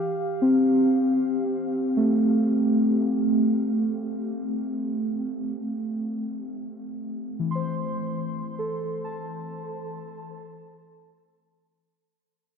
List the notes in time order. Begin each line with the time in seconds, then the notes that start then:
Already playing: G4 F5
0.42 C4
1.97 A3
7.39 E3
7.51 C6
7.55 C5
8.59 A4
9.04 A5